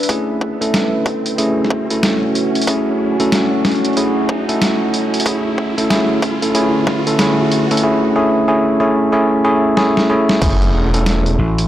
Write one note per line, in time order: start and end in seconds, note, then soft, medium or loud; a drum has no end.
0.00 2.09 B4 medium
0.00 7.84 E5 medium
0.00 closed hi-hat medium
0.00 riser medium
0.09 0.57 A3 medium
0.09 5.26 C#4 medium
0.09 0.57 C#4 medium
0.09 0.57 E4 medium
0.09 0.57 G#4 medium
0.09 kick loud
0.09 closed hi-hat medium
0.29 7.04 F#4 medium
0.41 kick medium
0.61 1.37 A3 medium
0.61 1.37 C#4 medium
0.61 1.37 E4 medium
0.61 1.37 A4 medium
0.61 closed hi-hat soft
0.74 snare loud
0.74 closed hi-hat medium
1.06 kick loud
1.06 closed hi-hat soft
1.26 closed hi-hat medium
1.38 1.86 A3 medium
1.38 1.86 C#4 medium
1.38 1.86 E4 medium
1.38 1.86 G#4 loud
1.38 closed hi-hat medium
1.64 snare soft
1.70 kick loud
1.90 2.66 A3 medium
1.90 2.66 C#4 medium
1.90 2.66 E4 medium
1.90 2.66 A4 medium
1.90 closed hi-hat soft
2.03 snare loud
2.03 closed hi-hat medium
2.35 closed hi-hat medium
2.55 closed hi-hat soft
2.62 closed hi-hat medium
2.67 3.15 A3 medium
2.67 3.15 C#4 medium
2.67 3.15 E4 medium
2.67 3.15 G#4 loud
2.67 kick loud
2.67 closed hi-hat medium
3.20 3.95 A3 medium
3.20 3.95 C#4 medium
3.20 3.95 E4 medium
3.20 3.95 A4 loud
3.20 closed hi-hat soft
3.32 snare loud
3.32 closed hi-hat medium
3.65 snare medium
3.65 closed hi-hat soft
3.71 closed hi-hat soft
3.75 closed hi-hat soft
3.85 closed hi-hat medium
3.86 closed hi-hat soft
3.93 closed hi-hat soft
3.97 4.44 A3 loud
3.97 4.44 C#4 medium
3.97 4.44 E4 medium
3.97 4.44 G#4 loud
3.97 closed hi-hat medium
4.29 kick loud
4.49 5.24 A3 medium
4.49 5.24 C#4 medium
4.49 5.24 E4 medium
4.49 5.24 A4 loud
4.49 closed hi-hat soft
4.62 snare loud
4.62 closed hi-hat medium
4.94 closed hi-hat medium
5.14 closed hi-hat soft
5.20 closed hi-hat medium
5.26 7.84 D3 medium
5.26 5.73 A3 medium
5.26 5.73 C#4 medium
5.26 5.73 E4 medium
5.26 5.73 G#4 loud
5.26 kick loud
5.26 closed hi-hat medium
5.58 kick medium
5.70 7.84 B4 medium
5.78 5.88 A3 medium
5.78 5.88 C#4 medium
5.78 5.88 E4 medium
5.78 5.88 A4 loud
5.78 closed hi-hat medium
5.90 6.38 A3 medium
5.90 6.38 C#4 medium
5.90 6.38 E4 medium
5.90 6.38 G#4 loud
5.90 snare loud
5.90 closed hi-hat medium
6.22 kick loud
6.22 closed hi-hat soft
6.42 6.53 A3 medium
6.42 6.53 C#4 medium
6.42 6.53 E4 medium
6.42 6.53 A4 loud
6.42 closed hi-hat medium
6.55 7.02 A3 loud
6.55 7.02 C#4 medium
6.55 7.02 E4 loud
6.55 7.02 G#4 loud
6.55 closed hi-hat medium
6.87 kick loud
6.87 snare soft
7.07 7.17 A3 medium
7.07 7.17 C#4 medium
7.07 7.17 E4 medium
7.07 7.17 A4 loud
7.07 closed hi-hat soft
7.19 7.67 A3 loud
7.19 7.67 C#4 medium
7.19 7.67 E4 medium
7.19 7.67 G#4 loud
7.19 snare loud
7.19 closed hi-hat medium
7.52 closed hi-hat medium
7.71 7.82 A3 loud
7.71 7.82 C#4 medium
7.71 7.82 E4 medium
7.71 7.82 A4 loud
7.71 closed hi-hat soft
7.77 closed hi-hat medium
7.83 8.14 A3 loud
7.83 8.14 C#4 medium
7.83 8.14 E4 medium
7.83 8.14 G#4 loud
8.16 8.46 A3 medium
8.16 8.46 C#4 medium
8.16 8.46 E4 medium
8.16 8.46 G#4 loud
8.48 8.79 A3 loud
8.48 8.79 C#4 medium
8.48 8.79 E4 medium
8.48 8.79 G#4 loud
8.80 9.11 A3 loud
8.80 9.11 C#4 medium
8.80 9.11 E4 medium
8.80 9.11 G#4 loud
9.12 9.43 A3 loud
9.12 9.43 C#4 medium
9.12 9.43 E4 medium
9.12 9.43 G#4 loud
9.44 9.75 A3 loud
9.44 9.75 C#4 medium
9.44 9.75 E4 medium
9.44 9.75 G#4 loud
9.77 10.08 A3 loud
9.77 10.08 C#4 medium
9.77 10.08 E4 loud
9.77 10.08 G#4 loud
9.77 snare medium
9.97 snare medium
10.10 10.40 A3 loud
10.10 10.40 C#4 loud
10.10 10.40 E4 loud
10.10 10.40 G#4 loud
10.29 snare medium
10.42 10.72 F#1 loud
10.42 10.89 A3 medium
10.42 10.89 C#4 medium
10.42 10.90 E4 medium
10.42 11.68 F#4 medium
10.42 10.89 G#4 loud
10.42 kick loud
10.42 closed hi-hat medium
10.42 crash loud
10.42 impact medium
10.62 closed hi-hat soft
10.69 11.68 C#5 medium
10.74 11.37 E1 loud
10.94 11.68 A3 medium
10.94 11.68 C#4 medium
10.94 11.68 E4 medium
10.94 11.68 A4 loud
10.94 closed hi-hat medium
11.06 snare loud
11.06 closed hi-hat medium
11.26 closed hi-hat soft
11.39 11.68 A1 medium
11.58 closed hi-hat medium